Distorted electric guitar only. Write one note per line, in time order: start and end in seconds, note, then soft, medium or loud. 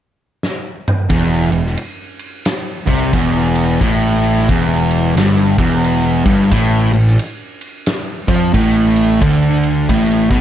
1.09 1.50 E2 loud
1.52 1.72 E2 medium
2.87 3.12 C3 medium
3.13 3.80 E2 loud
3.81 4.48 A2 loud
4.49 5.16 E2 medium
5.17 5.57 G2 medium
5.58 6.24 E2 loud
6.25 6.50 G2 loud
6.51 6.92 A2 loud
6.93 7.14 A2 medium
8.28 8.53 F3 loud
8.54 9.21 A2 loud
9.21 9.88 D3 loud
9.90 10.30 A2 loud
10.31 10.41 B2 medium